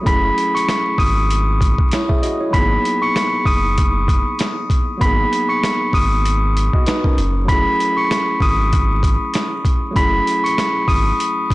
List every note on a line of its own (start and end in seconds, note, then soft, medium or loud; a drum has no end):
0.01 2.16 F#3 medium
0.01 2.17 A3 medium
0.01 2.18 C#4 medium
0.06 0.30 F#1 loud
0.06 1.89 E4 medium
0.06 1.89 G#4 medium
0.06 0.53 B5 loud
0.06 0.53 B6 medium
0.06 kick loud
0.06 closed hi-hat medium
0.38 closed hi-hat medium
0.55 0.96 C#6 medium
0.55 0.96 C#7 medium
0.55 closed hi-hat medium
0.68 snare loud
0.68 snare medium
0.68 closed hi-hat medium
0.98 1.75 G#1 medium
0.98 1.45 D#6 medium
0.98 1.45 D#7 medium
0.98 kick medium
0.98 open hi-hat medium
1.30 closed hi-hat loud
1.61 kick loud
1.61 closed hi-hat medium
1.78 kick loud
1.92 2.10 E4 medium
1.92 2.10 C#5 medium
1.92 snare loud
1.92 closed hi-hat medium
2.09 2.22 G#4 medium
2.09 2.22 E5 medium
2.09 kick medium
2.22 2.40 F#4 medium
2.22 2.40 D#5 medium
2.22 closed hi-hat medium
2.40 2.70 E4 soft
2.40 2.70 C#5 medium
2.50 2.77 G#1 loud
2.50 4.95 F#3 medium
2.50 4.96 A#3 medium
2.50 2.99 B5 loud
2.50 3.00 B6 medium
2.50 kick loud
2.50 closed hi-hat medium
2.54 4.97 B3 medium
2.54 4.98 D#4 medium
2.54 4.99 G#4 medium
2.85 closed hi-hat medium
3.02 3.43 C#6 medium
3.02 3.44 C#7 medium
3.16 snare loud
3.16 snare medium
3.16 closed hi-hat medium
3.46 4.22 F#1 medium
3.46 3.92 D#6 medium
3.46 3.93 D#7 medium
3.46 kick medium
3.46 open hi-hat medium
3.78 kick loud
3.78 closed hi-hat medium
4.08 kick medium
4.08 closed hi-hat medium
4.39 snare loud
4.39 snare medium
4.39 closed hi-hat medium
4.70 kick medium
4.70 closed hi-hat medium
4.98 5.25 G#1 loud
4.98 6.51 F#3 medium
4.98 6.52 A#3 medium
4.98 6.53 B3 medium
4.98 5.47 B5 loud
4.98 kick loud
4.98 closed hi-hat medium
5.02 6.54 D#4 medium
5.02 6.55 G#4 medium
5.02 5.48 B6 medium
5.33 closed hi-hat medium
5.49 5.90 C#6 medium
5.49 5.91 C#7 medium
5.63 snare loud
5.63 snare medium
5.63 closed hi-hat medium
5.93 6.69 G#1 medium
5.93 6.40 D#6 medium
5.93 6.40 D#7 medium
5.93 kick medium
5.93 open hi-hat medium
6.25 closed hi-hat medium
6.57 closed hi-hat medium
6.73 6.87 F#4 medium
6.73 6.86 D#5 medium
6.73 kick medium
6.86 7.04 D#4 medium
6.86 7.04 B4 medium
6.86 snare loud
6.86 snare medium
6.86 closed hi-hat medium
7.04 7.34 C#4 medium
7.04 7.34 A#4 medium
7.04 kick medium
7.18 7.65 F#1 loud
7.18 closed hi-hat medium
7.45 9.90 F#3 medium
7.45 9.91 A3 medium
7.45 9.92 C#4 medium
7.45 7.95 B5 loud
7.45 kick loud
7.49 9.93 E4 medium
7.49 9.94 G#4 medium
7.49 7.95 B6 medium
7.49 closed hi-hat medium
7.80 closed hi-hat medium
7.97 8.38 C#6 medium
7.97 8.39 C#7 medium
8.11 snare loud
8.11 snare medium
8.11 closed hi-hat medium
8.40 9.17 G#1 medium
8.40 8.88 D#6 medium
8.40 8.88 D#7 medium
8.40 kick medium
8.40 open hi-hat medium
8.73 kick loud
8.73 closed hi-hat loud
9.03 kick loud
9.03 closed hi-hat medium
9.34 snare loud
9.34 snare medium
9.34 closed hi-hat medium
9.65 kick medium
9.65 closed hi-hat medium
9.91 11.54 F#3 medium
9.91 11.54 A3 medium
9.91 11.54 C#4 medium
9.96 10.20 F#1 loud
9.96 11.54 E4 medium
9.96 11.54 G#4 medium
9.96 10.42 B5 loud
9.96 10.43 B6 medium
9.96 kick loud
9.96 closed hi-hat medium
10.27 closed hi-hat medium
10.44 10.85 C#6 medium
10.44 10.86 C#7 medium
10.44 closed hi-hat medium
10.58 snare loud
10.58 snare medium
10.58 closed hi-hat medium
10.88 11.12 G#1 medium
10.88 11.34 D#6 medium
10.88 11.35 D#7 medium
10.88 kick medium
10.88 open hi-hat medium
11.20 closed hi-hat medium
11.50 11.54 G#1 loud
11.50 kick loud